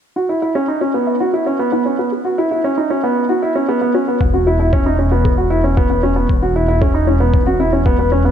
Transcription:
<<
  \new Staff \with { instrumentName = "Synth arpeggio sound" } { \time 4/4 \key a \lydian \tempo 4 = 115 r16 e'16 r16 fis'16 gis'16 r16 fis'16 r16 e''16 e'16 fis'16 fis''16 r16 e'16 r16 fis'16 | gis'16 r16 fis'16 r16 e''16 e'16 fis'16 fis''16 r16 e'16 r16 fis'16 gis'16 r16 fis'16 r16 | fis''16 cis'16 fis'16 a''16 r16 cis'16 r16 fis'16 a'16 r16 fis'16 r16 fis''16 cis'16 fis'16 a''16 | r16 cis'16 r16 e'16 a'16 r16 e'16 r16 cis''16 cis'16 cis'16 e'16 r16 b'16 r16 cis'16 | }
  \new Staff \with { instrumentName = "Grand piano" } { \time 4/4 \key a \lydian r16 fis'16 e'16 e'16 cis'16 dis'16 cis'16 b8 fis'16 e'16 cis'16 b16 b16 cis'16 b16 | r16 fis'16 e'16 e'16 cis'16 dis'16 cis'16 b8 fis'16 e'16 cis'16 b16 b16 cis'16 b16 | r16 fis'16 e'16 e'16 cis'16 dis'16 cis'16 b8 fis'16 e'16 cis'16 b16 b16 cis'16 b16 | r16 fis'16 e'16 e'16 cis'16 dis'16 cis'16 b8 fis'16 e'16 cis'16 b16 b16 cis'16 b16 | }
  \new Staff \with { instrumentName = "Detuned saw bass" } { \clef bass \time 4/4 \key a \lydian r1 | r1 | e,,1 | e,,1 | }
  \new DrumStaff \with { instrumentName = "Drums" } \drummode { \time 4/4 r4 r4 r4 r4 | r4 r4 r4 r4 | bd4 bd4 bd4 bd4 | bd4 bd4 bd4 bd4 | }
>>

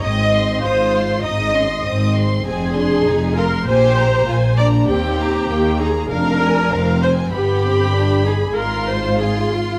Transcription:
<<
  \new Staff \with { instrumentName = "Violin section" } { \time 4/4 \key aes \major \tempo 4 = 98 ees'''8 c'''8 ees'''8 c'''8 ees'''8 c'''8 ees'''8 c'''8 | \key f \dorian aes''8 c'''8 aes''8 c'''8 aes''8 bes''8 aes''8 bes''8 | g''8 bes''8 g''8 bes''8 f''8 aes''8 f''8 aes''8 | b''2 c'''4 c'''4 | }
  \new Staff \with { instrumentName = "Viola section" } { \time 4/4 \key aes \major ees''4 c''4 ees''4. r8 | \key f \dorian aes'4. bes'8 c''4. d''8 | g'4. aes'8 bes'4. c''8 | g'4. aes'8 bes'8 c''8 aes'8 f'8 | }
  \new Staff \with { instrumentName = "Violin section" } { \time 4/4 \key aes \major c'4 f'4 ees'8 des'8 c'4 | \key f \dorian c'8 d'8 ees'8 f'8 g'4 f'8 d'8 | c'4 bes8 ees'8 d'4 c'4 | b8 c'8 d'8 ees'8 f'2 | }
  \new Staff \with { instrumentName = "Cello section" } { \clef bass \time 4/4 \key aes \major aes,4 aes,4 aes,4 aes,4 | \key f \dorian f,4 f,4 bes,4 bes,4 | ees,4 ees,4 f,4 f,4 | g,2 aes,2 | }
  \new Staff \with { instrumentName = "Double bass section" } { \clef bass \time 4/4 \key aes \major aes,,4 aes,,4 aes,,4 aes,,4 | \key f \dorian f,,4 f,,4 bes,,4 bes,,4 | ees,4 ees,4 f,,4 f,,4 | g,,2 aes,,2 | }
>>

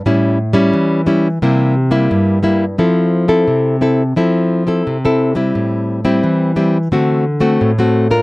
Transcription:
\new Staff \with { instrumentName = "Nylon-string guitar" } { \time 4/4 \key c \mixolydian \tempo 4 = 87 << { <g cis' e'>8 r16 <g cis' e'>8. <g cis' e'>16 r16 <g bes e'>8 r16 <g bes e'>8. <g bes e'>16 r16 | \key f \major <c' e' a'>8. <c' e' a'>8. <c' e' a'>16 r16 <c' e' a'>8. <c' e' a'>8 <c' e' a'>8 <g c' e'>16~ | <g c' e'>8. <g c' e'>8. <g c' e'>16 r16 <a c' fis'>8 r16 <a c' fis'>8 <a c' fis'>8 <d' f' bes'>16 | } \\ { a,4 e4 c4 g,4 | f4 c4 f4 c4 | a,4 e4 d4 a,4 | } >> }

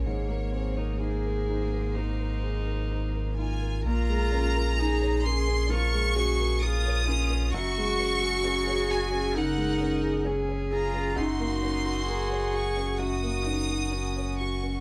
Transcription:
<<
  \new Staff \with { instrumentName = "Violin section" } { \time 4/4 \key bes \minor \tempo 4 = 65 des''4 c''2~ c''8 aes''8 | bes''4. c'''8 des'''4 ees'''4 | des'''4. aes''8 ges''4 r8 bes''8 | c'''4. des'''8 ees'''4. des'''8 | }
  \new Staff \with { instrumentName = "Viola" } { \time 4/4 \key bes \minor aes16 bes16 c'16 ees'16 aes'4 ees'4. f'8 | bes'4 aes'8 aes'8 bes'8 aes'8 bes'8 f'8 | ges'4 aes'4 bes'4 aes'4 | ges'2 ges'2 | }
  \new Staff \with { instrumentName = "Upright piano" } { \time 4/4 \key bes \minor aes,16 bes'16 aes'16 bes'16 ees'16 bes'16 ees'16 bes'16 ees16 bes'16 aes'16 bes'16 ees'16 bes'16 ees'16 bes'16 | bes,16 aes16 des'16 bes'16 aes'16 des''16 bes'16 des'16 f16 aes16 des'16 bes'16 aes'16 des''16 bes'16 des'16 | ges,16 aes16 des'16 aes'16 des'16 des''16 aes'16 des'16 des16 aes16 des'16 aes'16 des'16 des''16 aes'16 des'16 | ges,16 bes16 des'16 ges'16 bes'16 des''16 ges'16 des'16 ges,16 bes16 des'16 ges'16 bes'16 des''16 ges'16 des'16 | }
  \new Staff \with { instrumentName = "Cello" } { \time 4/4 \key bes \minor bes1 | f'4 ees'8 des'8 f'8 ges'8 f'8 des'8 | ges'2 ees'4 des'8 f'8 | ees'4 aes'4 ges'8 ees'8 des'4 | }
  \new Staff \with { instrumentName = "Sub bass" } { \clef bass \time 4/4 \key bes \minor aes,,1 | bes,,1 | ges,,1 | ges,,1 | }
>>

